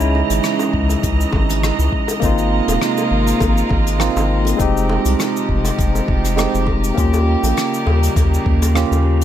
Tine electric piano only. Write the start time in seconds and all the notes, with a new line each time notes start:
Already playing: G#3 C#4 D#4 E4
2.20 A#3 C4 D#4
2.25 F4
3.99 A#3 C4 D#4 F4
4.57 G#3 C4 D#4
4.62 G4
6.36 G#3 C4 D#4 G4
6.95 A#3 C#4 F4
7.00 G4
8.75 A#3 C#4 F4 G4